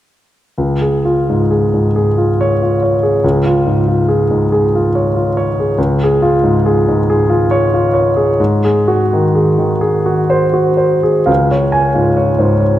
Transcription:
0.58 C#2
0.81 G#4
1.05 F4
1.30 G#2
1.51 G#4
1.74 G#2
1.96 G#4
2.18 F4
2.41 C#5
2.62 F4
2.83 C#5
3.03 G#4
3.24 C#2
3.46 F4
3.66 G#2
3.88 F4
4.08 G#4
4.31 G#2
4.52 G#4
4.75 F4
4.95 C#5
5.16 F4
5.37 C#5
5.60 G#4
5.78 C#2
6.03 G#4
6.22 F4
6.43 G#2
6.66 G#4
6.88 G#2
7.10 G#4
7.29 F4
7.51 C#5
7.74 F4
7.94 C#5
8.16 G#4
8.40 G#2
8.65 G#4
8.88 F#4
9.13 D#3
9.35 G#4
9.58 D#3
9.81 G#4
10.06 F#4
10.30 C5
10.53 F#4
10.77 C5
11.03 G#4
11.26 C#2 F5
11.51 C#5
11.72 G#5
11.94 G#2 F4
12.17 C#5
12.39 G#2 C5
12.60 C#5

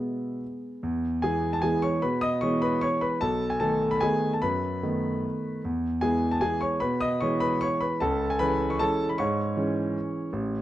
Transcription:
Already playing: B2 G#3 B3 B4 E5
0.83 E2
1.22 E3 G#3 B3 G#4 G#5
1.53 A5
1.62 E3 G#3 B3 G#4 G#5
1.82 C#5 C#6
2.02 B2 B4 B5
2.21 D#5 D#6
2.41 E3 G#3 B3 C#5 C#6
2.62 B4 B5
2.81 C#5 C#6
3.01 B4 B5
3.21 B1 A4 A5
3.50 G#5
3.60 D#3 A3 B3 A4 A5
3.91 B5
4.01 D#3 A3 B3 G#4 G#5
4.34 A5
4.42 F#2 B4 B5
4.83 D#3 A3 B3
5.65 E2
6.01 E3 G#3 B3 G#4 G#5
6.31 A5
6.41 E3 G#3 B3 G#4 G#5
6.61 C#5 C#6
6.80 B2 B4 B5
7.01 D#5 D#6
7.21 E3 G#3 B3 C#5 C#6
7.40 B4 B5
7.61 C#5 C#6
7.81 B4 B5
8.00 C#2 A4 A5
8.30 G#5
8.39 E3 G#3 C#4 B4 B5
8.70 C#6
8.79 E3 G#3 C#4 A4 A5
9.09 B5
9.18 G#2 C#5 C#6
9.56 E3 G#3 C#4
10.33 A1

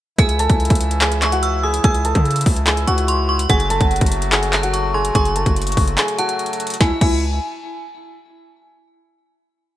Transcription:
0.18 C#2 C#3 E3 E4 G#4 G#5, kick, closed hi-hat
0.29 closed hi-hat
0.39 A4 A5, closed hi-hat
0.50 C#2, kick, closed hi-hat
0.60 closed hi-hat
0.65 closed hi-hat
0.70 C#2, kick, closed hi-hat
0.75 closed hi-hat
0.81 closed hi-hat
0.91 closed hi-hat
1.01 G#4 G#5, clap, closed hi-hat
1.12 closed hi-hat
1.22 C#6, clap, closed hi-hat
1.32 F#4 F#5, closed hi-hat
1.43 E6, closed hi-hat
1.63 G#4 G#5 D#6
1.74 closed hi-hat
1.84 C#2 G#4 G#5 E6, kick, closed hi-hat
1.94 closed hi-hat
2.05 A4 A5, closed hi-hat
2.15 C#3, kick, closed hi-hat
2.25 closed hi-hat
2.31 closed hi-hat
2.36 closed hi-hat
2.41 closed hi-hat
2.46 C#2, kick, open hi-hat
2.56 closed hi-hat
2.67 G#4 G#5, clap, closed hi-hat
2.77 closed hi-hat
2.87 C#2 F#4 F#5 C#6, closed hi-hat
2.98 closed hi-hat
3.08 C6, closed hi-hat
3.29 C#6
3.39 closed hi-hat
3.50 F#1 F#3 A3 F#4 G#4 F#5 G#5, kick, closed hi-hat
3.60 closed hi-hat
3.70 A4 A5, closed hi-hat
3.81 F#1, kick, closed hi-hat
3.91 closed hi-hat
3.96 closed hi-hat
4.01 F#1, kick, closed hi-hat
4.06 closed hi-hat
4.12 closed hi-hat
4.22 closed hi-hat
4.32 G#4 G#5, clap, closed hi-hat
4.43 closed hi-hat
4.53 A5, clap, closed hi-hat
4.63 F#4 F#5, closed hi-hat
4.73 C#6, closed hi-hat
4.94 G#4 G#5 C6
5.05 closed hi-hat
5.15 F#1 G#4 G#5 C#6, kick, closed hi-hat
5.25 closed hi-hat
5.36 A4 A5, closed hi-hat
5.46 F#1, kick, closed hi-hat
5.56 closed hi-hat
5.62 closed hi-hat
5.67 closed hi-hat
5.72 closed hi-hat
5.77 F#1, kick, open hi-hat
5.88 closed hi-hat
5.98 G#4 G#5, clap, closed hi-hat
6.08 closed hi-hat
6.18 F#4 F#5 A5, closed hi-hat
6.29 closed hi-hat
6.39 closed hi-hat
6.46 closed hi-hat
6.53 closed hi-hat
6.60 closed hi-hat
6.67 closed hi-hat
6.70 closed hi-hat
6.74 closed hi-hat
6.81 C#2 C#3 E3 G#3 E4 G#5, kick, snare, closed hi-hat
7.01 C#2 E4 G#5, kick, closed hi-hat, crash

